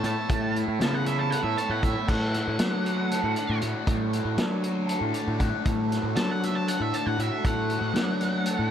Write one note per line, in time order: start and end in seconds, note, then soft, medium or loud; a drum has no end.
0.00 0.15 A2 medium
0.00 0.28 A3 medium
0.00 0.29 B3 medium
0.00 0.54 E4 medium
0.00 0.83 A4 medium
0.00 1.05 C#5 medium
0.00 closed hi-hat medium
0.06 0.55 A5 medium
0.28 0.62 A2 medium
0.28 2.07 A3 medium
0.28 kick loud
0.28 closed hi-hat medium
0.55 1.05 E4 medium
0.55 closed hi-hat medium
0.68 0.79 A2 medium
0.80 1.34 C#3 medium
0.80 2.08 B3 medium
0.80 0.94 A5 medium
0.80 snare loud
0.80 closed hi-hat medium
0.94 1.06 F#5 medium
1.06 1.82 E4 medium
1.06 1.19 E5 medium
1.06 snare soft
1.06 closed hi-hat medium
1.19 1.31 A5 medium
1.30 3.10 A4 medium
1.30 1.42 F#5 medium
1.30 closed hi-hat medium
1.43 1.55 A2 medium
1.43 1.56 E5 medium
1.57 2.08 C#5 medium
1.57 1.70 A5 medium
1.57 closed hi-hat medium
1.70 1.80 A2 medium
1.70 1.84 F#5 medium
1.83 1.94 A2 medium
1.83 2.08 E4 medium
1.83 2.08 E5 medium
1.83 kick medium
1.83 snare soft
1.83 closed hi-hat medium
2.07 2.40 A2 medium
2.07 3.86 A3 medium
2.07 3.58 F#5 loud
2.07 kick loud
2.07 crash medium
2.33 2.84 F#4 medium
2.33 snare soft
2.33 closed hi-hat medium
2.48 2.58 A2 medium
2.59 3.13 F#3 medium
2.59 4.37 D4 medium
2.59 snare loud
2.59 closed hi-hat loud
2.84 3.61 F#4 medium
2.84 closed hi-hat medium
3.11 4.87 A4 medium
3.11 snare soft
3.11 closed hi-hat medium
3.24 3.34 A2 medium
3.35 5.12 D5 medium
3.35 closed hi-hat medium
3.49 3.60 A2 medium
3.61 3.73 A2 medium
3.61 4.12 F#4 medium
3.61 closed hi-hat medium
3.86 4.19 A2 medium
3.86 5.64 A3 medium
3.86 kick loud
3.86 closed hi-hat medium
4.12 4.62 F#4 medium
4.12 closed hi-hat medium
4.25 4.36 A2 medium
4.37 4.91 F#3 medium
4.37 6.15 D4 medium
4.37 snare loud
4.37 closed hi-hat medium
4.62 5.38 F#4 medium
4.62 closed hi-hat medium
4.87 6.65 A4 medium
4.87 closed hi-hat medium
5.01 5.12 A2 medium
5.13 6.91 D5 medium
5.13 closed hi-hat medium
5.28 5.38 A2 medium
5.39 5.51 A2 medium
5.39 5.88 F#4 medium
5.39 kick medium
5.39 closed hi-hat medium
5.65 5.98 A2 medium
5.65 7.44 A3 medium
5.65 kick loud
5.65 closed hi-hat medium
5.89 6.40 F#4 medium
5.89 snare soft
5.89 closed hi-hat medium
6.03 6.14 A2 medium
6.16 6.70 F#3 medium
6.16 7.44 D4 medium
6.16 6.29 A5 medium
6.16 snare loud
6.16 closed hi-hat medium
6.31 6.44 F#5 medium
6.41 7.17 F#4 medium
6.41 6.56 E5 medium
6.41 snare soft
6.41 closed hi-hat medium
6.55 6.67 A5 medium
6.66 8.46 A4 medium
6.66 6.82 F#5 medium
6.66 closed hi-hat medium
6.80 6.91 A2 medium
6.80 6.93 E5 medium
6.92 8.20 D5 medium
6.92 7.06 A5 medium
6.92 closed hi-hat medium
7.06 7.17 A2 medium
7.06 7.20 F#5 medium
7.18 7.29 A2 medium
7.18 7.69 F#4 medium
7.18 7.44 E5 medium
7.18 closed hi-hat medium
7.44 7.76 A2 medium
7.44 8.71 A3 medium
7.44 8.71 F#5 loud
7.44 kick loud
7.44 closed hi-hat medium
7.70 8.20 F#4 medium
7.70 closed hi-hat medium
7.81 7.92 A2 medium
7.94 8.48 F#3 medium
7.94 8.71 D4 medium
7.94 snare loud
7.94 closed hi-hat loud
8.21 8.71 F#4 medium
8.21 snare soft
8.21 closed hi-hat medium
8.46 8.71 A4 medium
8.46 closed hi-hat medium
8.59 8.70 A2 medium